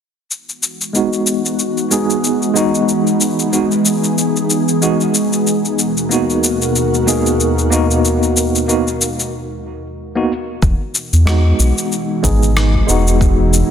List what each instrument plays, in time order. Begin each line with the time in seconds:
0.30 ambient pad E3 G#3 B3 D#4 F#4, shaker
0.49 shaker
0.63 shaker
0.81 shaker
0.93 tine electric piano G#3 B3 D#4 F#4, shaker
1.13 shaker
1.27 shaker
1.46 shaker
1.59 shaker
1.77 shaker
1.91 tine electric piano G#3 B3 D#4 G#4, shaker
2.10 shaker
2.24 shaker
2.42 shaker
2.54 tine electric piano G#3 B3 D#4 F#4, shaker
2.75 shaker
2.88 ambient pad G#4, shaker
3.07 shaker
3.21 shaker
3.39 shaker
3.52 tine electric piano G#3 B3 D#4 F#4, shaker
3.72 shaker
3.86 shaker
4.04 shaker
4.18 shaker
4.36 shaker
4.50 shaker
4.68 shaker
4.81 tine electric piano G#3 B3 D#4 F#4, shaker
5.01 shaker
5.15 shaker
5.33 shaker
5.45 ambient pad D#2 B2 F#4 A#4, shaker
5.65 shaker
5.79 shaker
5.97 shaker
6.09 tine electric piano A#3 B3 D#4 F#4, shaker
6.30 shaker
6.44 shaker
6.62 shaker
6.76 shaker
6.94 shaker
7.07 tine electric piano A#3 B3 D#4 G#4, shaker
7.26 shaker
7.40 shaker
7.59 shaker
7.70 tine electric piano A#3 B3 D#4 F#4, shaker
7.91 shaker
8.05 shaker
8.23 shaker
8.37 shaker
8.55 shaker
8.68 tine electric piano A#3 B3 D#4 F#4, shaker
8.88 shaker
9.01 shaker
9.20 shaker
10.15 tine electric piano A#3 B3 D#4 F#4
10.62 analog synth bass E1, ambient pad B2 E3 G#3 D#4 F#4, kick, shaker
10.95 shaker
11.13 analog synth bass E2, shaker
11.25 tine electric piano G#3 B3 D#4 F#4, cross-stick, shaker
11.59 analog synth bass B1, shaker
11.78 shaker
11.92 shaker
12.23 analog synth bass G#1, tine electric piano G#3 B3 D#4 G#4, kick, shaker
12.43 shaker
12.57 cross-stick, shaker
12.75 kick
12.87 analog synth bass E1, tine electric piano G#3 B3 D#4 F#4, shaker
13.07 shaker
13.21 kick, shaker
13.54 shaker